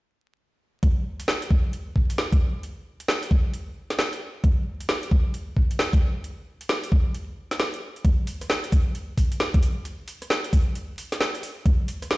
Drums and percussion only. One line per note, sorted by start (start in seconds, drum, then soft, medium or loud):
0.83 kick loud
0.83 closed hi-hat medium
1.20 closed hi-hat medium
1.28 snare loud
1.42 closed hi-hat medium
1.51 kick loud
1.73 closed hi-hat medium
1.96 kick medium
2.10 closed hi-hat medium
2.18 snare loud
2.32 kick loud
2.32 closed hi-hat soft
2.63 closed hi-hat medium
3.00 closed hi-hat medium
3.08 snare loud
3.23 closed hi-hat medium
3.31 kick loud
3.54 closed hi-hat medium
3.90 snare medium
3.90 closed hi-hat medium
3.99 snare loud
4.13 closed hi-hat soft
4.44 kick loud
4.44 closed hi-hat medium
4.81 closed hi-hat medium
4.89 snare loud
5.03 closed hi-hat medium
5.11 kick loud
5.34 closed hi-hat medium
5.56 kick medium
5.71 closed hi-hat medium
5.79 snare loud
5.93 kick loud
5.93 closed hi-hat soft
6.24 closed hi-hat medium
6.61 closed hi-hat medium
6.69 snare loud
6.84 closed hi-hat medium
6.92 kick loud
7.14 closed hi-hat medium
7.51 snare medium
7.51 closed hi-hat medium
7.60 snare loud
7.74 closed hi-hat soft
7.96 closed hi-hat soft
8.05 kick loud
8.05 closed hi-hat medium
8.27 open hi-hat medium
8.41 cross-stick soft
8.41 closed hi-hat medium
8.50 snare loud
8.64 closed hi-hat medium
8.72 kick loud
8.72 open hi-hat medium
8.95 closed hi-hat medium
9.17 kick medium
9.17 open hi-hat medium
9.32 closed hi-hat medium
9.40 snare loud
9.54 kick loud
9.54 closed hi-hat soft
9.63 open hi-hat medium
9.85 closed hi-hat medium
10.08 open hi-hat loud
10.22 cross-stick soft
10.22 closed hi-hat medium
10.30 snare loud
10.44 closed hi-hat medium
10.53 kick medium
10.53 open hi-hat loud
10.75 closed hi-hat medium
10.98 open hi-hat loud
11.12 snare medium
11.12 closed hi-hat medium
11.21 snare loud
11.35 closed hi-hat medium
11.43 open hi-hat medium
11.66 kick loud
11.66 closed hi-hat medium
11.88 open hi-hat loud
12.02 cross-stick soft
12.02 closed hi-hat medium
12.11 snare loud